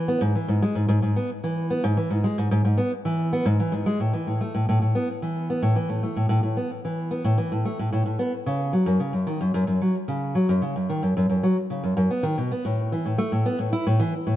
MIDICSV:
0, 0, Header, 1, 2, 480
1, 0, Start_track
1, 0, Tempo, 540541
1, 1632, Time_signature, 4, 2, 24, 8
1, 12753, End_track
2, 0, Start_track
2, 0, Title_t, "Steel-string acoustic guitar"
2, 0, Program_c, 0, 25
2, 73, Note_on_c, 0, 59, 72
2, 180, Note_off_c, 0, 59, 0
2, 186, Note_on_c, 0, 44, 104
2, 297, Note_off_c, 0, 44, 0
2, 314, Note_on_c, 0, 52, 66
2, 421, Note_off_c, 0, 52, 0
2, 430, Note_on_c, 0, 44, 75
2, 539, Note_off_c, 0, 44, 0
2, 555, Note_on_c, 0, 56, 78
2, 661, Note_off_c, 0, 56, 0
2, 669, Note_on_c, 0, 44, 79
2, 775, Note_off_c, 0, 44, 0
2, 786, Note_on_c, 0, 44, 94
2, 897, Note_off_c, 0, 44, 0
2, 909, Note_on_c, 0, 44, 79
2, 1018, Note_off_c, 0, 44, 0
2, 1033, Note_on_c, 0, 59, 79
2, 1146, Note_off_c, 0, 59, 0
2, 1276, Note_on_c, 0, 52, 73
2, 1502, Note_off_c, 0, 52, 0
2, 1513, Note_on_c, 0, 59, 74
2, 1621, Note_off_c, 0, 59, 0
2, 1632, Note_on_c, 0, 44, 109
2, 1740, Note_off_c, 0, 44, 0
2, 1751, Note_on_c, 0, 52, 73
2, 1859, Note_off_c, 0, 52, 0
2, 1869, Note_on_c, 0, 44, 74
2, 1978, Note_off_c, 0, 44, 0
2, 1990, Note_on_c, 0, 56, 77
2, 2099, Note_off_c, 0, 56, 0
2, 2114, Note_on_c, 0, 44, 89
2, 2221, Note_off_c, 0, 44, 0
2, 2232, Note_on_c, 0, 44, 92
2, 2340, Note_off_c, 0, 44, 0
2, 2350, Note_on_c, 0, 44, 77
2, 2459, Note_off_c, 0, 44, 0
2, 2465, Note_on_c, 0, 59, 76
2, 2582, Note_off_c, 0, 59, 0
2, 2710, Note_on_c, 0, 52, 78
2, 2939, Note_off_c, 0, 52, 0
2, 2955, Note_on_c, 0, 59, 79
2, 3061, Note_off_c, 0, 59, 0
2, 3068, Note_on_c, 0, 44, 98
2, 3178, Note_off_c, 0, 44, 0
2, 3195, Note_on_c, 0, 52, 75
2, 3301, Note_off_c, 0, 52, 0
2, 3304, Note_on_c, 0, 44, 79
2, 3416, Note_off_c, 0, 44, 0
2, 3429, Note_on_c, 0, 56, 81
2, 3538, Note_off_c, 0, 56, 0
2, 3552, Note_on_c, 0, 45, 71
2, 3660, Note_off_c, 0, 45, 0
2, 3671, Note_on_c, 0, 52, 59
2, 3779, Note_off_c, 0, 52, 0
2, 3793, Note_on_c, 0, 45, 54
2, 3900, Note_off_c, 0, 45, 0
2, 3915, Note_on_c, 0, 57, 61
2, 4021, Note_off_c, 0, 57, 0
2, 4037, Note_on_c, 0, 45, 65
2, 4142, Note_off_c, 0, 45, 0
2, 4163, Note_on_c, 0, 45, 78
2, 4265, Note_off_c, 0, 45, 0
2, 4278, Note_on_c, 0, 45, 61
2, 4383, Note_off_c, 0, 45, 0
2, 4397, Note_on_c, 0, 59, 64
2, 4508, Note_off_c, 0, 59, 0
2, 4639, Note_on_c, 0, 52, 60
2, 4863, Note_off_c, 0, 52, 0
2, 4882, Note_on_c, 0, 59, 59
2, 4985, Note_off_c, 0, 59, 0
2, 4995, Note_on_c, 0, 45, 80
2, 5101, Note_off_c, 0, 45, 0
2, 5113, Note_on_c, 0, 52, 60
2, 5220, Note_off_c, 0, 52, 0
2, 5231, Note_on_c, 0, 45, 58
2, 5339, Note_off_c, 0, 45, 0
2, 5355, Note_on_c, 0, 57, 55
2, 5461, Note_off_c, 0, 57, 0
2, 5475, Note_on_c, 0, 45, 61
2, 5576, Note_off_c, 0, 45, 0
2, 5587, Note_on_c, 0, 45, 80
2, 5697, Note_off_c, 0, 45, 0
2, 5710, Note_on_c, 0, 45, 61
2, 5819, Note_off_c, 0, 45, 0
2, 5833, Note_on_c, 0, 59, 56
2, 5946, Note_off_c, 0, 59, 0
2, 6080, Note_on_c, 0, 52, 56
2, 6304, Note_off_c, 0, 52, 0
2, 6312, Note_on_c, 0, 59, 66
2, 6420, Note_off_c, 0, 59, 0
2, 6434, Note_on_c, 0, 45, 78
2, 6541, Note_off_c, 0, 45, 0
2, 6552, Note_on_c, 0, 52, 64
2, 6660, Note_off_c, 0, 52, 0
2, 6676, Note_on_c, 0, 45, 61
2, 6782, Note_off_c, 0, 45, 0
2, 6796, Note_on_c, 0, 57, 62
2, 6902, Note_off_c, 0, 57, 0
2, 6921, Note_on_c, 0, 45, 65
2, 7024, Note_off_c, 0, 45, 0
2, 7038, Note_on_c, 0, 45, 83
2, 7143, Note_off_c, 0, 45, 0
2, 7154, Note_on_c, 0, 45, 56
2, 7261, Note_off_c, 0, 45, 0
2, 7274, Note_on_c, 0, 59, 62
2, 7387, Note_off_c, 0, 59, 0
2, 7516, Note_on_c, 0, 49, 66
2, 7742, Note_off_c, 0, 49, 0
2, 7753, Note_on_c, 0, 54, 62
2, 7860, Note_off_c, 0, 54, 0
2, 7869, Note_on_c, 0, 42, 84
2, 7979, Note_off_c, 0, 42, 0
2, 7990, Note_on_c, 0, 49, 59
2, 8099, Note_off_c, 0, 49, 0
2, 8108, Note_on_c, 0, 42, 59
2, 8218, Note_off_c, 0, 42, 0
2, 8231, Note_on_c, 0, 51, 63
2, 8339, Note_off_c, 0, 51, 0
2, 8353, Note_on_c, 0, 42, 69
2, 8461, Note_off_c, 0, 42, 0
2, 8473, Note_on_c, 0, 42, 89
2, 8578, Note_off_c, 0, 42, 0
2, 8589, Note_on_c, 0, 42, 63
2, 8698, Note_off_c, 0, 42, 0
2, 8716, Note_on_c, 0, 54, 60
2, 8828, Note_off_c, 0, 54, 0
2, 8952, Note_on_c, 0, 49, 62
2, 9180, Note_off_c, 0, 49, 0
2, 9191, Note_on_c, 0, 54, 62
2, 9299, Note_off_c, 0, 54, 0
2, 9316, Note_on_c, 0, 42, 79
2, 9422, Note_off_c, 0, 42, 0
2, 9429, Note_on_c, 0, 49, 64
2, 9539, Note_off_c, 0, 49, 0
2, 9553, Note_on_c, 0, 42, 64
2, 9661, Note_off_c, 0, 42, 0
2, 9675, Note_on_c, 0, 51, 58
2, 9781, Note_off_c, 0, 51, 0
2, 9793, Note_on_c, 0, 42, 65
2, 9900, Note_off_c, 0, 42, 0
2, 9917, Note_on_c, 0, 42, 77
2, 10019, Note_off_c, 0, 42, 0
2, 10030, Note_on_c, 0, 42, 63
2, 10139, Note_off_c, 0, 42, 0
2, 10153, Note_on_c, 0, 54, 66
2, 10267, Note_off_c, 0, 54, 0
2, 10391, Note_on_c, 0, 49, 62
2, 10500, Note_off_c, 0, 49, 0
2, 10510, Note_on_c, 0, 42, 63
2, 10617, Note_off_c, 0, 42, 0
2, 10628, Note_on_c, 0, 42, 88
2, 10738, Note_off_c, 0, 42, 0
2, 10750, Note_on_c, 0, 59, 70
2, 10859, Note_off_c, 0, 59, 0
2, 10861, Note_on_c, 0, 51, 86
2, 10974, Note_off_c, 0, 51, 0
2, 10991, Note_on_c, 0, 47, 66
2, 11105, Note_off_c, 0, 47, 0
2, 11114, Note_on_c, 0, 59, 66
2, 11221, Note_off_c, 0, 59, 0
2, 11232, Note_on_c, 0, 45, 79
2, 11460, Note_off_c, 0, 45, 0
2, 11475, Note_on_c, 0, 52, 72
2, 11581, Note_off_c, 0, 52, 0
2, 11594, Note_on_c, 0, 45, 66
2, 11701, Note_off_c, 0, 45, 0
2, 11707, Note_on_c, 0, 57, 84
2, 11817, Note_off_c, 0, 57, 0
2, 11829, Note_on_c, 0, 45, 71
2, 11945, Note_off_c, 0, 45, 0
2, 11949, Note_on_c, 0, 59, 74
2, 12058, Note_off_c, 0, 59, 0
2, 12066, Note_on_c, 0, 45, 70
2, 12177, Note_off_c, 0, 45, 0
2, 12189, Note_on_c, 0, 64, 89
2, 12298, Note_off_c, 0, 64, 0
2, 12313, Note_on_c, 0, 45, 93
2, 12420, Note_off_c, 0, 45, 0
2, 12429, Note_on_c, 0, 52, 105
2, 12544, Note_off_c, 0, 52, 0
2, 12669, Note_on_c, 0, 45, 77
2, 12753, Note_off_c, 0, 45, 0
2, 12753, End_track
0, 0, End_of_file